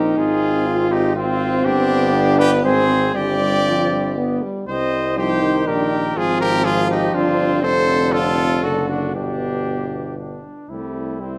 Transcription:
0.00 0.17 A#1 medium
0.00 0.16 C4 medium
0.00 0.68 D#4 loud
0.00 0.17 G4 medium
0.00 0.17 A#4 loud
0.17 1.62 G#1 medium
0.17 1.14 C4 medium
0.17 0.93 F4 loud
0.17 0.90 G#4 loud
0.67 1.16 F4 loud
0.91 1.16 D#4 loud
0.91 1.15 G4 loud
1.16 1.65 C4 loud
1.16 1.67 C4 loud
1.16 2.16 C4 loud
1.16 1.66 F4 loud
1.65 2.65 G1 loud
1.65 2.65 B3 loud
1.65 2.39 D4 loud
1.65 2.41 G4 loud
2.14 2.63 D4 loud
2.39 2.51 G4 loud
2.39 2.64 B4 loud
2.64 3.14 G#1 loud
2.64 3.14 C4 loud
2.64 3.16 C4 loud
2.64 3.16 G#4 loud
2.64 3.14 C5 loud
3.14 4.40 G1 medium
3.14 3.61 G3 medium
3.14 4.19 C4 medium
3.14 4.43 G4 loud
3.14 4.40 D5 loud
3.66 3.93 F3 loud
3.92 4.18 G3 medium
4.17 4.44 B3 loud
4.17 4.43 B3 medium
4.42 4.67 G3 medium
4.68 5.68 C2 medium
4.68 5.19 G3 medium
4.68 5.19 C4 medium
4.68 5.14 C5 loud
4.68 5.14 D#5 loud
5.18 5.44 F3 medium
5.18 5.68 D#4 medium
5.18 5.67 G4 loud
5.18 5.69 C5 loud
5.43 6.19 D#3 medium
5.67 6.16 A#1 medium
5.67 6.02 D4 medium
5.67 6.18 G4 medium
5.67 6.19 A#4 loud
6.16 7.12 G#1 loud
6.16 7.62 F3 medium
6.16 6.67 C4 medium
6.16 6.43 F4 loud
6.16 6.40 G#4 loud
6.41 6.65 G4 loud
6.41 6.66 A#4 loud
6.65 7.13 F4 loud
6.65 6.89 F4 loud
6.65 6.89 G#4 loud
6.90 7.14 D#4 loud
6.90 7.16 G4 loud
7.14 7.65 G1 medium
7.14 7.65 C4 loud
7.14 7.65 D4 loud
7.14 7.62 F4 loud
7.63 8.65 F1 loud
7.63 8.61 D3 medium
7.63 8.65 C4 medium
7.63 8.14 A4 loud
7.63 8.14 C5 loud
8.12 8.65 F4 loud
8.12 8.62 A4 loud
8.63 9.16 F#1 medium
8.63 9.17 D3 medium
8.63 9.15 D4 medium
8.63 8.89 F#4 medium
8.63 8.88 A4 loud
8.89 9.15 D4 medium
8.89 9.15 F#4 loud
9.15 10.44 G1 medium
9.15 10.44 B2 medium
9.15 10.42 B3 medium
9.15 10.17 D4 medium
9.15 10.17 G4 loud
10.18 10.71 D4 medium
10.69 11.38 C2 soft
10.69 11.17 G3 medium
10.69 11.22 A3 soft
10.69 11.22 C4 soft
10.69 11.38 E4 medium
11.20 11.38 G3 medium
11.20 11.38 C4 medium
11.20 11.38 E4 medium

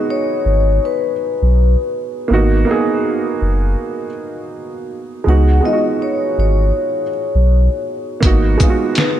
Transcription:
0.00 2.32 G#3 medium
0.00 2.30 B3 medium
0.00 2.31 D#4 medium
0.00 2.31 F#4 medium
0.00 1.13 G#4 medium
0.10 0.85 C#5 medium
0.45 0.79 G#1 medium
0.85 1.91 B4 medium
1.42 1.76 B1 medium
2.28 2.64 G#1 loud
2.28 2.63 A#3 medium
2.28 2.65 B3 medium
2.28 2.66 D#4 medium
2.33 2.67 F#4 medium
2.65 4.06 A#3 medium
2.65 4.07 B3 medium
2.65 4.08 D#4 medium
2.71 4.09 G#4 medium
3.42 3.76 F#1 medium
5.24 5.61 C#2 loud
5.24 5.59 G#3 medium
5.24 5.61 B3 medium
5.24 5.62 D#4 medium
5.29 5.63 F#4 medium
5.29 5.62 F#5 medium
5.61 7.02 G#3 medium
5.61 7.03 B3 medium
5.61 7.04 D#4 medium
5.65 5.73 F4 medium
5.65 5.82 D#5 medium
5.73 7.08 F#4 medium
6.02 6.36 C#5 medium
6.38 6.72 G#1 medium
6.38 7.83 C#5 medium
7.35 7.69 B1 medium
8.20 8.57 G#1 loud
8.20 8.57 A#3 medium
8.20 8.57 B3 medium
8.20 8.58 D#4 medium
8.20 kick medium
8.20 closed hi-hat medium
8.26 8.59 F#4 medium
8.58 9.20 G#3 medium
8.58 9.20 B3 medium
8.58 9.20 D#4 medium
8.58 kick medium
8.58 closed hi-hat soft
8.58 shaker soft
8.63 8.69 F4 medium
8.70 9.20 F#4 medium
8.95 9.20 B4 medium
8.95 snare loud
8.95 closed hi-hat medium

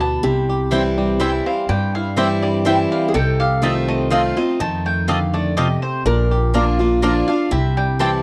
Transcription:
0.00 0.16 D2 medium
0.00 0.21 B2 medium
0.00 0.92 G3 medium
0.00 0.24 B3 medium
0.00 0.23 D4 medium
0.00 0.44 G4 medium
0.00 0.23 A5 medium
0.23 1.39 C2 loud
0.23 1.16 C3 medium
0.23 0.72 E4 medium
0.23 3.04 G4 medium
0.49 1.16 G4 medium
0.71 1.18 E3 medium
0.71 1.18 G3 medium
0.71 0.81 C4 medium
0.71 1.19 C4 medium
0.71 0.81 E4 medium
0.71 1.20 E4 medium
0.71 1.19 E4 medium
0.71 0.81 C5 loud
0.71 0.81 G5 loud
0.98 1.65 G3 medium
1.20 1.66 E3 medium
1.20 1.67 G3 medium
1.20 1.29 C4 medium
1.20 1.67 C4 medium
1.20 1.30 E4 medium
1.20 1.90 E4 medium
1.20 1.67 E4 medium
1.20 1.30 C5 medium
1.20 1.45 E5 medium
1.20 1.30 G5 loud
1.46 2.86 C4 medium
1.46 1.68 F5 medium
1.69 2.84 G2 medium
1.69 2.61 G2 medium
1.69 2.38 G3 medium
1.69 1.94 G5 medium
1.95 2.62 E4 medium
1.95 2.17 F5 medium
2.16 2.63 E3 medium
2.16 2.64 G3 medium
2.16 2.27 C4 loud
2.16 2.64 C4 medium
2.16 2.27 E4 medium
2.16 2.64 E4 medium
2.16 2.87 G4 medium
2.16 2.27 C5 loud
2.16 2.42 E5 medium
2.16 2.27 G5 medium
2.42 2.91 G3 medium
2.42 2.65 D5 medium
2.65 3.12 E3 medium
2.65 3.12 G3 medium
2.65 2.75 C4 medium
2.65 3.12 C4 medium
2.65 2.75 E4 loud
2.65 3.14 E4 medium
2.65 3.13 E4 medium
2.65 2.76 C5 loud
2.65 2.91 E5 medium
2.65 2.76 G5 medium
2.92 3.15 G3 medium
2.92 3.14 F5 medium
3.08 3.15 G#4 medium
3.14 4.30 C2 medium
3.14 4.07 C3 medium
3.14 3.63 D#4 medium
3.14 5.79 A4 loud
3.14 3.39 G5 loud
3.40 4.07 G4 medium
3.40 3.62 F5 loud
3.62 4.09 D#3 medium
3.62 4.09 A3 medium
3.62 3.72 C4 medium
3.62 4.09 C4 medium
3.62 4.11 D#4 medium
3.62 3.72 F4 medium
3.62 4.10 F4 medium
3.62 3.73 D#5 medium
3.62 3.88 E5 medium
3.62 3.73 A5 loud
3.88 4.56 A3 medium
3.88 4.11 D#5 medium
4.10 4.36 D#3 medium
4.10 4.36 A3 medium
4.10 4.21 C4 loud
4.10 4.36 C4 medium
4.10 4.59 D#4 medium
4.10 4.21 F4 loud
4.10 4.35 F4 loud
4.10 4.21 D#5 loud
4.10 4.36 F5 medium
4.10 4.21 A5 loud
4.37 5.04 C4 medium
4.37 4.60 C4 soft
4.37 4.59 F4 medium
4.37 4.59 D#5 loud
4.60 5.76 F2 medium
4.60 5.53 D#3 medium
4.60 5.29 D#4 medium
4.60 4.85 A5 medium
4.86 5.33 A3 medium
4.86 5.08 G5 medium
5.08 5.55 D3 medium
5.08 5.18 C4 loud
5.08 5.18 F4 loud
5.08 5.56 G4 medium
5.08 5.18 D#5 loud
5.08 5.33 F5 medium
5.08 5.18 A5 loud
5.34 6.01 A3 medium
5.34 5.56 D5 medium
5.57 6.04 C3 medium
5.57 5.67 C4 medium
5.57 5.67 F4 medium
5.57 6.06 G4 medium
5.57 5.82 D#5 medium
5.57 5.67 D#5 loud
5.57 5.67 A5 loud
5.82 6.06 C4 medium
5.82 6.05 C5 medium
6.05 7.21 A#1 loud
6.05 6.98 A#2 medium
6.05 6.53 D4 medium
6.05 7.56 A#4 loud
6.05 6.21 D5 medium
6.31 6.98 G4 medium
6.54 6.78 F3 medium
6.54 6.64 A#3 medium
6.54 6.79 A#3 medium
6.54 7.02 D4 medium
6.54 6.79 D4 medium
6.54 6.64 F4 medium
6.54 6.78 F4 medium
6.54 6.64 D5 medium
6.54 6.64 A#5 loud
6.79 7.47 A#3 medium
6.79 7.02 D4 soft
6.79 7.02 F4 medium
7.02 7.27 F3 medium
7.02 7.12 A#3 medium
7.02 7.27 A#3 medium
7.02 7.28 D4 medium
7.02 7.12 F4 medium
7.02 7.26 F4 loud
7.02 7.28 D5 medium
7.02 7.13 D5 loud
7.02 7.13 A#5 loud
7.28 7.52 D4 medium
7.28 7.51 D4 soft
7.28 7.50 F4 medium
7.28 7.51 F5 loud
7.51 8.22 C2 medium
7.51 8.22 C3 medium
7.51 8.21 E4 medium
7.51 8.22 G4 loud
7.51 7.76 E5 medium
7.77 8.22 G3 medium
7.77 8.00 G5 loud
7.99 8.22 E3 medium
7.99 8.22 G3 medium
7.99 8.09 C4 medium
7.99 8.22 C4 medium
7.99 8.10 E4 medium
7.99 8.22 E4 medium
7.99 8.22 G4 medium
7.99 8.10 C5 medium
7.99 8.10 G5 loud
7.99 8.22 A5 loud

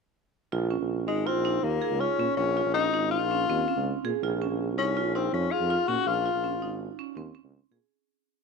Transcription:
0.52 0.76 A#1 loud
0.52 0.63 F4 medium
0.71 0.92 C#4 medium
0.80 1.10 A#1 medium
1.08 1.37 G#1 medium
1.08 1.28 G#3 medium
1.08 1.19 D#4 medium
1.27 1.65 C4 medium
1.27 1.37 F4 medium
1.35 1.59 A#1 medium
1.45 1.67 D#4 medium
1.63 1.79 D#2 medium
1.63 2.01 A#3 medium
1.82 1.93 G#4 medium
1.91 2.07 C#2 medium
2.00 2.36 C#4 medium
2.00 2.11 F4 medium
2.19 2.27 A#2 medium
2.19 2.41 C#4 medium
2.37 2.61 A#1 medium
2.37 2.72 C#4 medium
2.57 2.68 F4 medium
2.65 2.95 A#1 medium
2.74 2.86 C#4 medium
2.74 3.09 D#4 medium
2.93 3.23 G#1 medium
2.93 3.15 D#4 medium
3.11 4.00 F4 medium
3.21 3.44 A#1 medium
3.31 3.42 C#4 medium
3.49 3.64 D#2 medium
3.49 3.60 C4 medium
3.68 3.89 C#4 medium
3.76 3.92 C#2 medium
4.05 4.12 A#2 medium
4.05 4.15 G#4 medium
4.23 4.46 A#1 medium
4.23 4.34 F4 medium
4.42 4.63 C#4 medium
4.50 4.79 A#1 medium
4.78 5.07 C2 medium
4.78 5.12 C#4 medium
4.78 4.89 D#4 medium
4.97 5.07 F4 medium
5.05 5.28 A#1 medium
5.15 5.32 C4 medium
5.15 5.36 D#4 medium
5.33 5.48 F2 medium
5.33 5.53 C#4 medium
5.51 5.90 F4 medium
5.51 5.62 G#4 medium
5.61 5.76 F2 medium
5.70 5.81 F4 medium
5.88 5.96 A#2 medium
5.88 6.10 C#4 medium
5.88 6.09 F#4 medium
6.06 6.30 A#1 medium
6.06 6.80 F4 medium
6.26 6.36 F4 medium
6.34 6.63 A#1 medium
6.44 6.54 C#4 medium
6.61 6.89 G#1 medium
6.61 6.83 D#4 medium
6.99 7.09 C#4 medium
7.16 7.32 D#2 medium
7.16 7.28 C4 medium
7.35 7.56 C#4 medium
7.44 7.59 C#2 medium
7.71 7.79 A#2 medium
7.71 7.82 G#4 medium

